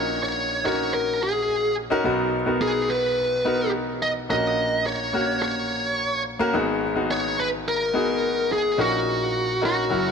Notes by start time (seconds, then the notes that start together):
Already playing: A#1 A#2 C#4 D#4 F#4 A#4 C#5
0.23 C#5
0.64 C#4 D#4 F#4 A#4 C#5
0.94 A#4
1.23 G#4
1.90 C#4 D#4 F#4 A#4
2.04 B1 B2 B3 D#4 F#4 A#4
2.46 B3 D#4 F#4 A#4
2.62 G#4
2.90 B4
3.45 B3 D#4 F#4 A#4
4.02 D#5
4.29 A#1 A#2 A#3 C#4 F#4 A#4 D#5
4.87 C#5
5.13 A#3 C#4 F#4 A#4
5.42 C#5
6.39 A#3 C#4 F#4 A#4
6.53 G#1 G#2 B3 D#4 F#4 G#4
6.95 B3 D#4 F#4 G#4
7.11 C#5
7.40 B4
7.68 A#4
7.94 B3 D#4 F#4 G#4
8.52 G#4
8.77 A#1 A#2 C#4 D#4 F#4 A#4
9.61 C#4 D#4 F#4 A#4
9.89 F#1 F#2 C#4 E4 F#4 A#4